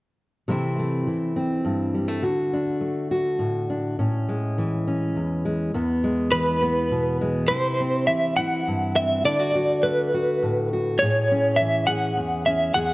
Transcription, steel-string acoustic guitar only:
0.48 1.06 C3 medium
0.48 1.06 E3 soft
0.48 0.78 A3 soft
0.48 1.35 C4 soft
0.48 2.23 E4 medium
0.78 1.94 A3 soft
1.07 2.20 E3 soft
1.36 2.20 C4 medium
1.65 2.20 G2 soft
1.94 2.08 G3 soft
2.08 2.23 A3 soft
2.22 3.98 D3 medium
2.22 3.10 F#4 medium
2.53 3.68 D4 soft
2.81 3.95 A3 soft
3.11 3.95 F#4 medium
3.39 3.98 A2 medium
3.70 3.95 D4 soft
3.99 5.16 A2 medium
3.99 4.86 C#4 soft
4.29 5.44 G#3 soft
4.58 6.32 E3 medium
4.87 5.71 C#4 soft
5.16 5.73 E2 medium
5.45 5.71 G#3 soft
5.74 7.50 E2 medium
5.74 6.61 B3 medium
6.04 7.20 G#3 soft
6.33 7.46 E3 soft
6.62 7.50 B3 medium
6.91 7.46 B2 soft
7.21 7.47 G#3 soft
7.49 8.08 C3 medium
7.49 8.37 E4 medium
7.80 8.95 C4 soft
8.08 9.21 E3 soft
8.39 9.24 E4 medium
8.68 9.22 G2 soft
8.96 9.22 C4 soft
9.24 11.00 D3 medium
9.24 9.39 E4 medium
9.39 9.54 F#4 soft
9.55 10.13 F#4 soft
9.83 10.97 A3 medium
10.14 10.71 F#4 medium
10.42 11.00 A2 medium
10.73 10.98 F#4 medium
11.02 12.18 A2 medium
11.02 11.88 G#4 medium
11.31 12.46 C#4 soft
11.60 12.94 E3 soft
11.88 12.72 G#4 medium
12.17 12.74 E2 medium
12.47 12.73 C#4 soft
12.75 12.94 E2 medium
12.75 12.94 G#4 medium

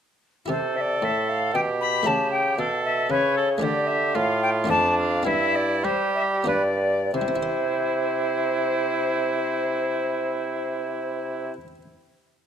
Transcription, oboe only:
0.49 1.57 A4 medium
1.56 2.58 G4 medium
2.59 3.12 A4 medium
3.11 3.36 B4 medium
3.37 3.49 A4 medium
3.63 4.17 G4 medium
4.15 4.72 F4 medium
4.70 5.25 D4 medium
5.25 5.86 E4 medium
5.84 6.47 G4 medium
6.48 6.63 B4 medium
7.16 11.55 E4 medium

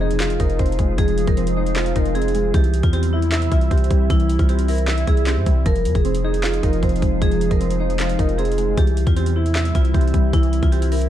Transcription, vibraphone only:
0.01 0.38 G#4 medium
0.40 0.58 A#4 medium
0.59 0.96 C5 medium
0.98 1.26 G#4 loud
1.27 1.37 A#4 medium
1.37 1.56 C5 medium
1.57 1.93 C5 medium
1.96 2.14 A#4 medium
2.15 2.52 G#4 medium
2.54 2.82 G4 loud
2.83 2.93 F4 medium
2.93 3.12 G4 medium
3.13 3.49 E4 medium
3.52 3.70 F4 medium
3.71 4.08 G4 medium
4.10 4.38 E4 medium
4.39 4.49 F4 medium
4.49 4.67 G4 medium
4.69 4.87 A#4 medium
5.07 5.26 G#4 medium
5.27 5.45 G4 medium
5.66 5.93 A#4 loud
5.95 6.04 G#4 medium
6.05 6.23 C5 medium
6.25 6.61 G#4 medium
6.63 6.82 A#4 medium
6.83 7.19 C5 medium
7.22 7.49 G#4 loud
7.51 7.60 A#4 medium
7.60 7.79 C5 medium
7.80 8.17 C5 medium
8.19 8.37 A#4 medium
8.38 8.75 G#4 medium
8.78 9.05 G4 loud
9.07 9.16 F4 medium
9.17 9.35 G4 medium
9.36 9.73 E4 medium
9.75 9.93 F4 medium
9.94 10.31 G4 medium
10.34 10.61 E4 medium
10.63 10.72 F4 medium
10.72 10.91 G4 medium
10.92 11.09 A#4 medium

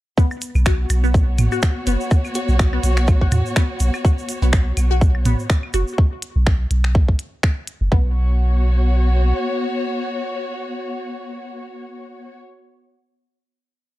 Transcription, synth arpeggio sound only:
0.17 0.24 B3 medium
0.66 0.72 F#4 medium
1.04 1.09 B3 medium
1.52 1.57 F#4 medium
1.87 1.93 B3 medium
2.35 2.42 F#4 medium
2.73 2.78 B3 medium
3.21 3.26 F#4 medium
3.56 3.63 B3 medium
4.05 4.11 F#4 medium
4.42 4.48 B3 medium
4.91 4.96 F#4 medium
5.26 5.32 B3 medium
5.74 5.81 F#4 medium
7.92 8.14 B3 loud

